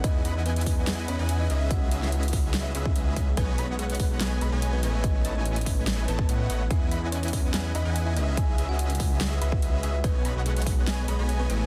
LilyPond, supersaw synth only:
\new Staff \with { instrumentName = "Supersaw synth" } { \time 4/4 \key cis \minor \tempo 4 = 144 <e' b' dis'' fis'' gis''>8 <e' b' dis'' fis'' b''>16 <e' b' dis'' fis'' gis''>4~ <e' b' dis'' fis'' gis''>16 <e' b' dis'' fis'' gis''>8 <e' b' dis'' fis'' b''>16 <e' b' dis'' fis'' gis''>8. <cis' gis' b' dis'' e''>8~ | <cis' gis' b' dis'' e''>8 <cis' gis' b' dis'' e''>16 <cis' gis' b' dis'' e''>4.~ <cis' gis' b' dis'' e''>16 <cis' gis' b' dis'' e''>8 <cis' gis' b' dis'' e''>8 <cis' gis' b' dis'' e''>16 r16 | <b b' cis'' dis'' gis''>8 <b b' cis'' dis'' b''>16 <b b' cis'' dis'' fis''>4~ <b b' cis'' dis'' fis''>16 <b b' cis'' dis'' gis''>8 <b b' cis'' dis'' b''>16 <b b' cis'' dis'' gis''>8. <a e' b' cis'' dis'' gis''>8~ | <a e' b' cis'' dis'' gis''>8 <a e' b' cis'' dis'' a''>16 <a e' b' cis'' dis'' gis''>4.~ <a e' b' cis'' dis'' gis''>16 <a e' b' cis'' dis'' a''>8 <a e' b' cis'' dis'' fis''>8 <a e' b' cis'' dis'' fis''>16 r16 |
<e' b' dis'' fis'' gis''>8 <e' b' dis'' fis'' b''>16 <e' b' dis'' fis'' gis''>4~ <e' b' dis'' fis'' gis''>16 <e' b' dis'' fis'' gis''>8 <e' b' dis'' fis'' b''>16 <e' b' dis'' fis'' gis''>8. <cis' gis' b' dis'' e''>8~ | <cis' gis' b' dis'' e''>8 <cis' gis' b' dis'' e''>16 <cis' gis' b' dis'' e''>4.~ <cis' gis' b' dis'' e''>16 <cis' gis' b' dis'' e''>8 <cis' gis' b' dis'' e''>8 <cis' gis' b' dis'' e''>16 r16 | <b b' cis'' dis'' gis''>8 <b b' cis'' dis'' b''>16 <b b' cis'' dis'' fis''>4~ <b b' cis'' dis'' fis''>16 <b b' cis'' dis'' gis''>8 <b b' cis'' dis'' b''>16 <b b' cis'' dis'' gis''>8. <a e' b' cis'' dis'' gis''>8 | }